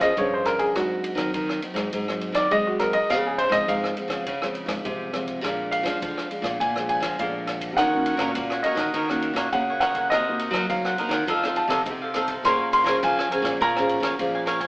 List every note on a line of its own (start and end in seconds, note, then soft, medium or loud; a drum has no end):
0.00 0.13 F3 medium
0.00 0.15 A#3 medium
0.00 0.12 C#4 medium
0.00 0.13 G#4 medium
0.00 0.13 C5 medium
0.00 0.16 D#5 medium
0.00 kick medium
0.00 cross-stick medium
0.00 ride medium
0.17 0.76 G2 medium
0.17 0.74 F3 medium
0.17 0.72 C#4 medium
0.17 0.72 G#4 medium
0.17 0.72 C5 medium
0.17 0.32 C#5 medium
0.17 kick medium
0.17 ride soft
0.34 0.47 C5 medium
0.45 0.61 A#4 medium
0.45 cross-stick medium
0.45 ride soft
0.59 0.74 G#4 medium
0.59 kick medium
0.59 ride soft
0.76 1.13 G#2 medium
0.76 1.32 G#2 soft
0.76 1.15 F#3 soft
0.76 1.16 C4 medium
0.76 1.16 D#4 medium
0.76 1.31 F#4 medium
0.76 kick medium
0.76 cross-stick medium
0.76 ride soft
1.04 ride soft
1.15 1.30 D#3 loud
1.15 1.58 F#3 medium
1.15 1.58 C4 medium
1.15 1.58 D#4 medium
1.15 kick medium
1.15 cross-stick medium
1.15 ride soft
1.34 1.90 D#3 medium
1.34 1.59 D#3 medium
1.34 kick medium
1.34 ride soft
1.49 cross-stick medium
1.62 2.03 F#3 medium
1.62 2.02 C4 medium
1.62 2.03 D#4 medium
1.62 ride soft
1.74 1.88 G#2 medium
1.74 kick medium
1.74 cross-stick medium
1.74 ride medium
1.93 2.30 G#2 medium
1.93 2.49 G#2 medium
1.93 kick medium
1.93 ride medium
2.08 2.47 F#3 medium
2.08 2.47 C4 medium
2.08 2.48 D#4 medium
2.08 cross-stick medium
2.21 ride soft
2.32 2.47 D#3 medium
2.32 2.50 D5 medium
2.32 kick medium
2.32 cross-stick medium
2.32 ride medium
2.51 3.07 D#3 medium
2.51 2.76 F#3 medium
2.51 3.10 G#3 medium
2.51 2.76 C4 medium
2.51 2.77 D#4 medium
2.51 2.66 D#5 medium
2.51 kick medium
2.51 ride soft
2.67 2.81 F#4 medium
2.79 2.97 F#3 medium
2.79 2.97 C4 medium
2.79 2.98 D#4 medium
2.79 2.95 A#4 medium
2.79 cross-stick medium
2.79 ride soft
2.93 3.09 D#5 medium
2.93 kick medium
2.93 ride soft
3.09 3.66 C#3 medium
3.09 3.47 C#3 medium
3.09 3.37 F3 medium
3.09 3.37 G#3 medium
3.09 3.38 C4 medium
3.09 3.25 F5 medium
3.09 kick medium
3.09 cross-stick medium
3.09 ride medium
3.27 3.40 G#4 medium
3.38 3.53 C5 medium
3.38 ride medium
3.49 3.64 G#2 medium
3.49 3.92 F3 medium
3.49 3.92 G#3 medium
3.49 3.92 C4 medium
3.49 3.67 D#5 medium
3.49 kick medium
3.49 cross-stick medium
3.49 ride medium
3.68 4.24 G#2 medium
3.68 3.93 G#2 loud
3.68 4.82 F5 medium
3.68 kick medium
3.68 ride medium
3.84 cross-stick medium
3.97 4.25 F3 medium
3.97 4.25 G#3 medium
3.97 4.26 C4 medium
3.97 ride soft
4.08 4.22 C#3 medium
4.08 kick medium
4.08 cross-stick medium
4.08 ride soft
4.26 4.64 C#3 loud
4.26 4.83 C#3 medium
4.26 kick medium
4.26 ride medium
4.42 4.81 F3 medium
4.42 4.82 G#3 medium
4.42 4.82 C4 medium
4.42 cross-stick medium
4.55 ride soft
4.66 4.81 G#2 medium
4.66 kick medium
4.66 cross-stick medium
4.66 ride medium
4.85 5.41 G#2 medium
4.85 5.43 C3 loud
4.85 5.10 F3 medium
4.85 5.10 G#3 medium
4.85 5.10 C4 medium
4.85 kick medium
4.85 ride soft
5.13 5.39 F3 medium
5.13 5.39 G#3 medium
5.13 5.39 C4 medium
5.13 cross-stick medium
5.13 ride soft
5.27 kick medium
5.27 ride soft
5.43 6.00 A#2 medium
5.43 5.81 A#2 medium
5.43 5.83 F3 medium
5.43 5.83 G#3 medium
5.43 5.83 D4 medium
5.43 kick medium
5.43 cross-stick medium
5.43 ride medium
5.71 6.56 F5 medium
5.71 ride medium
5.83 5.98 F3 medium
5.83 6.26 F3 medium
5.83 6.26 G#3 medium
5.83 6.26 D4 medium
5.83 kick medium
5.83 cross-stick medium
5.83 ride soft
6.02 6.58 F2 medium
6.02 6.27 F3 medium
6.02 kick loud
6.02 ride medium
6.18 cross-stick medium
6.30 6.58 F3 medium
6.30 6.59 G#3 soft
6.30 6.59 D4 medium
6.30 ride soft
6.42 6.56 A#2 medium
6.42 kick medium
6.42 cross-stick medium
6.42 ride soft
6.60 6.98 A#2 medium
6.60 7.17 A#2 medium
6.60 6.88 G#5 medium
6.60 kick medium
6.60 ride soft
6.76 7.15 F3 medium
6.76 7.16 G#3 medium
6.76 7.16 D4 medium
6.76 cross-stick medium
6.89 7.18 G#5 medium
6.89 ride soft
7.00 7.15 F3 medium
7.00 kick medium
7.00 cross-stick medium
7.00 ride medium
7.19 7.75 F2 medium
7.19 7.77 A#2 loud
7.19 7.74 F3 medium
7.19 7.74 G#3 medium
7.19 7.74 D4 medium
7.19 7.74 F5 medium
7.19 kick medium
7.19 ride soft
7.47 cross-stick medium
7.47 ride soft
7.61 kick medium
7.61 ride medium
7.77 8.15 D#3 medium
7.77 8.34 D#3 medium
7.77 7.87 A#3 medium
7.77 7.87 C#4 medium
7.77 8.04 D#4 medium
7.77 7.88 F#4 medium
7.77 8.05 A#4 medium
7.77 8.05 C#5 medium
7.77 8.61 F#5 medium
7.77 8.06 F#5 medium
7.77 kick medium
7.77 cross-stick medium
7.77 ride medium
7.94 8.18 A#3 medium
7.94 8.18 C#4 medium
7.94 8.18 F#4 medium
8.05 8.19 D#4 soft
8.05 8.19 A#4 soft
8.05 8.19 C#5 medium
8.05 8.20 F#5 medium
8.05 ride soft
8.17 8.32 A#2 medium
8.17 8.60 A#3 medium
8.17 8.60 C#4 medium
8.17 8.30 D#4 medium
8.17 8.61 F#4 medium
8.17 8.30 A#4 medium
8.17 8.30 C#5 medium
8.17 8.30 F#5 medium
8.17 kick medium
8.17 cross-stick medium
8.17 ride medium
8.35 8.61 A#2 medium
8.35 8.92 A#2 medium
8.35 kick loud
8.35 ride medium
8.50 8.64 A#4 soft
8.50 8.64 C#5 soft
8.50 8.65 F#5 soft
8.50 cross-stick medium
8.63 9.04 A#3 medium
8.63 9.04 C#4 medium
8.63 8.79 D#4 medium
8.63 9.05 F#4 medium
8.63 8.78 A#4 medium
8.63 8.78 C#5 medium
8.63 9.48 D#5 medium
8.63 8.77 F#5 medium
8.63 ride soft
8.75 8.90 D#3 medium
8.75 8.93 C#5 soft
8.75 8.93 F#5 soft
8.75 kick medium
8.75 cross-stick medium
8.75 ride soft
8.80 8.93 A#4 soft
8.94 9.31 D#3 medium
8.94 9.50 D#3 soft
8.94 9.08 D#4 medium
8.94 9.08 A#4 medium
8.94 9.08 C#5 medium
8.94 9.09 F#5 medium
8.94 kick medium
8.94 ride soft
9.09 9.49 A#3 medium
9.09 9.49 C#4 medium
9.09 9.49 F#4 medium
9.09 9.36 A#4 soft
9.09 9.36 C#5 soft
9.09 9.37 F#5 medium
9.09 cross-stick medium
9.22 ride soft
9.34 9.48 A#2 medium
9.34 9.47 D#4 medium
9.34 9.47 A#4 medium
9.34 9.47 C#5 medium
9.34 kick medium
9.34 cross-stick medium
9.34 ride soft
9.38 9.47 F#5 medium
9.52 10.09 A#2 medium
9.52 10.11 C#3 loud
9.52 9.91 A#3 medium
9.52 9.91 C#4 medium
9.52 9.91 F#4 medium
9.52 9.79 F#5 medium
9.52 kick medium
9.52 ride soft
9.70 9.80 A#4 soft
9.70 9.81 C#5 soft
9.70 9.81 F#5 soft
9.80 9.95 D#4 medium
9.80 9.95 A#4 medium
9.80 9.95 C#5 medium
9.80 10.10 F#5 medium
9.80 9.95 F#5 medium
9.80 cross-stick medium
9.80 ride soft
9.95 10.11 A#4 soft
9.95 10.10 C#5 soft
9.95 10.10 F#5 soft
9.95 kick medium
9.95 ride soft
10.10 10.48 C3 medium
10.10 10.67 C3 medium
10.10 10.21 A#3 soft
10.10 10.39 D#4 medium
10.10 10.21 D#4 soft
10.10 10.21 F#4 medium
10.10 10.40 A#4 medium
10.10 10.40 C5 medium
10.10 10.65 D#5 medium
10.10 10.41 F#5 medium
10.10 kick medium
10.10 cross-stick medium
10.10 ride soft
10.28 10.52 A#3 medium
10.28 10.52 D#4 medium
10.28 10.52 F#4 medium
10.39 10.53 D#4 soft
10.39 10.53 A#4 medium
10.39 10.53 C5 medium
10.39 10.54 F#5 medium
10.39 ride medium
10.51 10.65 F#3 loud
10.51 10.94 A#3 medium
10.51 10.64 D#4 medium
10.51 10.64 A#4 medium
10.51 10.64 C5 medium
10.51 kick medium
10.51 cross-stick medium
10.51 ride soft
10.55 10.94 D#4 medium
10.55 10.94 F#4 medium
10.55 10.64 F#5 medium
10.70 11.26 C3 medium
10.70 10.95 F#3 medium
10.70 11.53 F5 medium
10.70 kick medium
10.70 ride soft
10.85 10.98 A#4 soft
10.85 10.99 C5 soft
10.85 10.98 F#5 medium
10.85 cross-stick medium
10.98 11.18 A#3 medium
10.98 11.12 D#4 medium
10.98 11.18 D#4 medium
10.98 11.18 F#4 medium
10.98 11.12 A#4 medium
10.98 11.12 C5 medium
10.98 11.11 F#5 medium
10.98 ride soft
11.09 11.23 D#3 medium
11.09 11.27 C5 soft
11.09 11.26 F#5 medium
11.09 kick medium
11.09 cross-stick medium
11.09 ride medium
11.14 11.27 A#4 soft
11.27 11.65 F3 loud
11.27 11.85 F3 medium
11.27 11.38 C4 soft
11.27 11.42 D#4 medium
11.27 11.38 D#4 medium
11.27 11.42 A4 medium
11.27 11.38 A4 medium
11.27 11.42 C5 medium
11.27 11.42 F5 medium
11.27 kick medium
11.27 ride medium
11.43 11.83 C4 medium
11.43 11.83 D#4 medium
11.43 11.69 A4 soft
11.43 11.83 A4 medium
11.43 11.69 C5 soft
11.43 11.70 F5 medium
11.43 cross-stick medium
11.56 12.40 A5 medium
11.56 ride soft
11.68 11.82 C3 medium
11.68 11.80 D#4 medium
11.68 11.80 A4 medium
11.68 11.80 C5 medium
11.68 11.80 F5 medium
11.68 kick medium
11.68 cross-stick medium
11.68 ride medium
11.86 12.44 C3 medium
11.86 12.43 C3 medium
11.86 12.05 C4 medium
11.86 12.05 D#4 medium
11.86 12.05 A4 medium
11.86 kick medium
11.86 ride medium
12.02 12.14 A4 soft
12.02 12.14 C5 soft
12.02 12.15 F5 medium
12.14 12.33 C4 medium
12.14 12.28 D#4 medium
12.14 12.33 D#4 medium
12.14 12.28 A4 medium
12.14 12.33 A4 medium
12.14 12.27 C5 medium
12.14 12.26 F5 medium
12.14 cross-stick medium
12.14 ride medium
12.28 12.43 A4 soft
12.28 12.43 C5 soft
12.28 12.42 F5 soft
12.28 kick medium
12.28 ride medium
12.44 12.82 A#2 medium
12.44 13.00 A#3 medium
12.44 12.84 C#4 medium
12.44 12.84 G#4 medium
12.44 12.70 A#4 medium
12.44 12.84 C5 medium
12.44 12.71 C#5 medium
12.44 12.72 F5 medium
12.44 12.72 G#5 medium
12.44 12.72 C6 medium
12.44 kick medium
12.44 cross-stick medium
12.44 ride medium
12.72 12.84 A#4 medium
12.72 12.84 C#5 medium
12.72 12.85 F5 medium
12.72 12.85 G#5 medium
12.72 13.02 C6 medium
12.72 ride medium
12.84 12.98 F3 medium
12.84 13.27 C#4 medium
12.84 12.96 A#4 medium
12.84 12.96 C#5 medium
12.84 12.96 F5 medium
12.84 12.96 G#5 medium
12.84 kick medium
12.84 cross-stick medium
12.84 ride medium
12.88 13.27 G#4 medium
12.88 13.27 C5 medium
13.03 13.28 F3 loud
13.03 13.59 F3 medium
13.03 13.58 G#5 medium
13.03 kick loud
13.03 ride medium
13.17 13.31 C#5 soft
13.17 13.30 F5 medium
13.17 13.31 G#5 medium
13.17 cross-stick medium
13.31 13.60 C#4 medium
13.31 13.60 G#4 medium
13.31 13.45 A#4 medium
13.31 13.60 C5 medium
13.31 13.45 C#5 medium
13.31 13.44 F5 medium
13.31 13.43 G#5 medium
13.31 ride medium
13.42 13.56 A#2 loud
13.42 13.59 F5 soft
13.42 13.59 G#5 medium
13.42 kick medium
13.42 cross-stick medium
13.42 ride medium
13.46 13.60 C#5 soft
13.61 13.98 A#2 loud
13.61 14.17 A#3 medium
13.61 13.74 A#4 medium
13.61 13.75 C#5 medium
13.61 13.75 F5 medium
13.61 13.75 G#5 medium
13.61 14.45 A#5 medium
13.61 kick medium
13.61 ride medium
13.76 14.16 C#4 medium
13.76 14.16 G#4 medium
13.76 14.17 C5 medium
13.76 14.02 C#5 soft
13.76 14.03 F5 soft
13.76 14.03 G#5 medium
13.76 cross-stick medium
13.89 ride soft
14.00 14.15 F3 medium
14.00 14.13 A#4 medium
14.00 14.13 C#5 medium
14.00 14.13 F5 medium
14.00 14.13 G#5 medium
14.00 kick medium
14.00 cross-stick medium
14.00 ride medium
14.19 14.67 A#2 loud
14.19 14.67 F3 medium
14.19 14.57 C#4 medium
14.19 14.57 G#4 medium
14.19 14.57 C5 medium
14.19 kick medium
14.19 ride soft
14.35 14.46 C#5 soft
14.35 14.46 F5 soft
14.35 14.46 G#5 medium
14.46 14.61 A#4 medium
14.46 14.61 C#5 medium
14.46 14.60 F5 medium
14.46 14.59 G#5 medium
14.46 cross-stick medium
14.46 ride soft
14.60 14.67 C#5 soft
14.60 14.67 F5 soft
14.60 14.67 G#5 soft
14.60 kick medium
14.60 ride soft